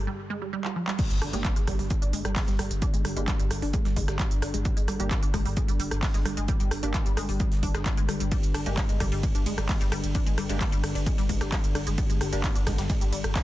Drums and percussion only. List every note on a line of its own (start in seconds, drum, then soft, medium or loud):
0.65 clap medium
0.88 clap loud
0.99 kick loud
0.99 closed hi-hat medium
0.99 crash loud
0.99 shaker medium
1.10 closed hi-hat medium
1.22 cross-stick medium
1.22 open hi-hat loud
1.22 shaker medium
1.33 closed hi-hat medium
1.45 kick loud
1.45 snare loud
1.45 clap loud
1.45 closed hi-hat medium
1.45 shaker medium
1.56 closed hi-hat medium
1.67 kick medium
1.67 cross-stick medium
1.67 open hi-hat loud
1.67 shaker medium
1.79 open hi-hat medium
1.90 kick loud
1.90 closed hi-hat medium
1.90 shaker medium
2.02 closed hi-hat medium
2.13 open hi-hat loud
2.13 shaker medium
2.25 cross-stick medium
2.25 closed hi-hat medium
2.36 kick loud
2.36 snare loud
2.36 clap loud
2.36 closed hi-hat medium
2.36 open hi-hat medium
2.48 snare medium
2.48 closed hi-hat medium
2.59 cross-stick medium
2.59 open hi-hat loud
2.59 shaker medium
2.71 closed hi-hat medium
2.82 kick loud
2.82 closed hi-hat medium
2.82 shaker medium
2.94 closed hi-hat medium
3.05 cross-stick medium
3.05 open hi-hat loud
3.05 shaker medium
3.17 closed hi-hat medium
3.28 kick loud
3.28 snare loud
3.28 clap loud
3.28 closed hi-hat medium
3.28 shaker medium
3.39 closed hi-hat medium
3.51 cross-stick medium
3.51 open hi-hat loud
3.51 shaker medium
3.62 open hi-hat medium
3.74 kick loud
3.74 closed hi-hat medium
3.74 shaker medium
3.85 snare soft
3.85 open hi-hat medium
3.96 kick medium
3.96 open hi-hat loud
3.96 shaker medium
4.08 cross-stick medium
4.08 snare medium
4.08 closed hi-hat medium
4.19 kick loud
4.19 snare loud
4.19 clap loud
4.19 closed hi-hat medium
4.19 shaker medium
4.31 closed hi-hat medium
4.42 cross-stick medium
4.42 open hi-hat loud
4.42 shaker medium
4.54 closed hi-hat medium
4.65 kick loud
4.65 closed hi-hat medium
4.65 shaker medium
4.77 closed hi-hat medium
4.88 cross-stick medium
4.88 open hi-hat loud
4.88 shaker medium
5.00 closed hi-hat medium
5.11 kick loud
5.11 snare loud
5.11 clap loud
5.11 closed hi-hat medium
5.11 shaker medium
5.23 closed hi-hat medium
5.34 kick medium
5.34 cross-stick medium
5.34 open hi-hat loud
5.34 shaker medium
5.46 open hi-hat medium
5.57 kick loud
5.57 closed hi-hat medium
5.57 shaker medium
5.68 closed hi-hat medium
5.80 open hi-hat loud
5.80 shaker medium
5.91 cross-stick medium
5.91 closed hi-hat medium
6.03 kick loud
6.03 snare loud
6.03 clap loud
6.03 closed hi-hat medium
6.03 open hi-hat medium
6.14 snare medium
6.14 closed hi-hat medium
6.25 cross-stick medium
6.25 open hi-hat loud
6.25 shaker medium
6.37 closed hi-hat medium
6.48 kick loud
6.48 closed hi-hat medium
6.48 shaker medium
6.60 closed hi-hat medium
6.71 cross-stick loud
6.71 open hi-hat loud
6.71 shaker medium
6.83 closed hi-hat medium
6.94 kick loud
6.94 snare loud
6.94 clap loud
6.94 closed hi-hat medium
6.94 shaker medium
7.06 closed hi-hat medium
7.17 cross-stick loud
7.17 open hi-hat loud
7.17 shaker medium
7.29 open hi-hat medium
7.40 kick loud
7.40 closed hi-hat medium
7.40 shaker medium
7.52 snare soft
7.52 open hi-hat medium
7.63 kick medium
7.63 open hi-hat loud
7.63 shaker medium
7.75 cross-stick loud
7.75 snare medium
7.75 closed hi-hat medium
7.86 kick loud
7.86 snare loud
7.86 clap loud
7.86 closed hi-hat medium
7.86 shaker medium
7.97 closed hi-hat medium
8.09 cross-stick loud
8.09 open hi-hat loud
8.09 shaker medium
8.20 closed hi-hat medium
8.32 kick loud
8.32 closed hi-hat medium
8.32 ride medium
8.32 shaker medium
8.43 closed hi-hat medium
8.43 ride medium
8.54 cross-stick loud
8.54 open hi-hat loud
8.54 ride medium
8.54 shaker medium
8.66 closed hi-hat medium
8.66 ride medium
8.77 kick loud
8.77 snare loud
8.77 clap loud
8.77 closed hi-hat medium
8.77 ride medium
8.77 shaker medium
8.89 closed hi-hat medium
8.89 ride medium
9.00 kick medium
9.00 cross-stick loud
9.00 open hi-hat loud
9.00 ride medium
9.00 shaker medium
9.12 open hi-hat medium
9.12 ride medium
9.23 kick loud
9.23 closed hi-hat medium
9.23 ride medium
9.23 shaker medium
9.35 closed hi-hat medium
9.35 ride medium
9.46 open hi-hat loud
9.46 ride medium
9.46 shaker medium
9.58 cross-stick medium
9.58 closed hi-hat medium
9.58 ride medium
9.69 kick loud
9.69 snare loud
9.69 clap loud
9.69 closed hi-hat medium
9.69 open hi-hat medium
9.69 ride medium
9.81 snare medium
9.81 closed hi-hat medium
9.81 ride medium
9.92 cross-stick loud
9.92 open hi-hat loud
9.92 ride medium
9.92 shaker medium
10.04 closed hi-hat medium
10.04 ride medium
10.15 kick loud
10.15 closed hi-hat medium
10.15 ride medium
10.15 shaker medium
10.27 closed hi-hat medium
10.27 ride medium
10.38 cross-stick loud
10.38 open hi-hat loud
10.38 ride medium
10.38 shaker medium
10.50 closed hi-hat medium
10.50 ride medium
10.61 kick loud
10.61 snare loud
10.61 clap loud
10.61 closed hi-hat medium
10.61 ride medium
10.61 shaker medium
10.72 closed hi-hat medium
10.72 ride medium
10.84 cross-stick loud
10.84 open hi-hat loud
10.84 ride medium
10.84 shaker medium
10.95 open hi-hat medium
10.95 ride medium
11.06 kick loud
11.06 closed hi-hat medium
11.06 ride medium
11.06 shaker medium
11.18 snare soft
11.18 open hi-hat medium
11.18 ride medium
11.29 kick medium
11.29 open hi-hat loud
11.29 ride medium
11.29 shaker medium
11.41 cross-stick loud
11.41 snare medium
11.41 closed hi-hat medium
11.41 ride medium
11.52 kick loud
11.52 snare loud
11.52 clap loud
11.52 closed hi-hat medium
11.52 ride medium
11.52 shaker medium
11.64 closed hi-hat medium
11.64 ride medium
11.75 cross-stick loud
11.75 open hi-hat loud
11.75 ride medium
11.75 shaker medium
11.87 closed hi-hat medium
11.87 ride medium
11.98 kick loud
11.98 closed hi-hat medium
11.98 ride medium
11.98 shaker medium
12.10 closed hi-hat medium
12.10 ride medium
12.21 cross-stick loud
12.21 open hi-hat loud
12.21 ride medium
12.21 shaker medium
12.33 closed hi-hat medium
12.33 ride medium
12.44 kick loud
12.44 snare loud
12.44 clap loud
12.44 closed hi-hat medium
12.44 ride medium
12.44 shaker medium
12.55 closed hi-hat medium
12.55 ride medium
12.67 kick medium
12.67 cross-stick loud
12.67 snare loud
12.67 open hi-hat loud
12.67 ride medium
12.67 shaker medium
12.78 snare loud
12.78 open hi-hat medium
12.78 ride medium
12.78 shaker medium
12.90 kick loud
12.90 snare loud
12.90 closed hi-hat medium
12.90 ride medium
12.90 shaker medium
13.01 closed hi-hat medium
13.01 ride medium
13.13 open hi-hat loud
13.13 ride medium
13.13 shaker medium
13.24 cross-stick medium
13.24 closed hi-hat medium
13.24 ride medium
13.35 kick loud
13.35 snare loud
13.35 clap loud
13.35 closed hi-hat medium
13.35 open hi-hat medium
13.35 ride medium